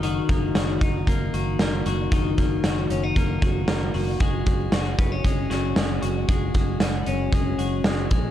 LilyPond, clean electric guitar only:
\new Staff \with { instrumentName = "Clean electric guitar" } { \time 4/4 \key ges \major \tempo 4 = 115 <ees ges'>8 bes8 ges'8 ees'8 bes8 ges'8 bes8 ges'8 | <ees ges'>8 bes8 ges'8 des'16 ees'16 bes8 ges'8 bes8 ges'8 | <aes ges'>8 aes8 ges'8 ces'16 des'16 aes8 ges'8 aes8 ges'8 | <aes ges'>8 aes8 ges'8 des'8 aes8 ges'8 aes8 aes8 | }